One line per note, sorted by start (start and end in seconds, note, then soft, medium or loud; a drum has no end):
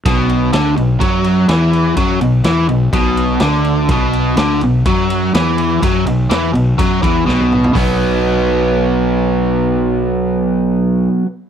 0.06 0.50 B1 medium
0.06 0.53 B2 loud
0.06 kick loud
0.06 ride medium
0.29 ride medium
0.53 0.76 D2 medium
0.53 0.76 D3 loud
0.53 snare loud
0.53 ride medium
0.77 1.00 B1 medium
0.77 0.96 B2 medium
0.77 ride medium
1.00 1.46 F#2 medium
1.00 1.48 F#3 loud
1.00 kick medium
1.00 ride medium
1.24 ride medium
1.49 1.94 E2 medium
1.49 1.96 E3 medium
1.49 snare loud
1.49 ride medium
1.73 ride medium
1.97 2.19 F#2 loud
1.97 2.20 F#3 medium
1.97 kick loud
1.97 ride medium
2.21 2.43 B1 medium
2.21 2.40 B2 medium
2.21 ride medium
2.44 2.67 E2 medium
2.44 2.68 E3 medium
2.44 snare loud
2.44 ride medium
2.69 2.91 B1 medium
2.69 2.88 B2 medium
2.69 ride medium
2.93 3.38 B1 medium
2.93 3.41 B2 loud
2.93 kick loud
2.93 ride medium
3.17 ride medium
3.40 3.86 D2 medium
3.40 3.89 D3 loud
3.40 snare loud
3.40 ride medium
3.64 ride medium
3.89 4.34 B1 medium
3.89 4.37 B2 loud
3.89 kick loud
3.89 ride medium
4.13 ride medium
4.37 4.60 D2 medium
4.37 4.61 D3 medium
4.37 snare loud
4.37 ride medium
4.61 4.85 B1 medium
4.61 4.82 B2 medium
4.61 ride medium
4.85 5.31 F#2 medium
4.85 5.34 F#3 loud
4.85 kick medium
4.85 ride loud
5.10 ride medium
5.34 5.79 E2 medium
5.34 5.82 E3 medium
5.34 snare loud
5.34 ride medium
5.58 ride medium
5.83 6.05 F#2 medium
5.83 6.06 F#3 loud
5.83 kick loud
5.83 ride medium
6.06 6.29 B1 medium
6.06 6.26 B2 medium
6.06 ride medium
6.30 6.53 E2 medium
6.30 6.53 E3 loud
6.30 snare loud
6.30 ride medium
6.53 6.77 B1 medium
6.53 6.73 B2 medium
6.53 ride medium
6.78 7.01 F#2 loud
6.78 7.02 F#3 loud
6.78 kick loud
6.78 ride medium
7.02 7.25 E2 medium
7.02 7.25 E3 medium
7.02 kick loud
7.02 ride medium
7.26 7.72 B1 loud
7.26 7.72 B2 loud
7.26 snare medium
7.40 high tom medium
7.52 mid tom medium
7.64 floor tom medium
7.73 11.07 B1 medium
7.73 11.23 B2 medium
7.73 11.26 F#3 loud
7.73 11.27 B3 loud
7.73 kick medium
7.73 open hi-hat medium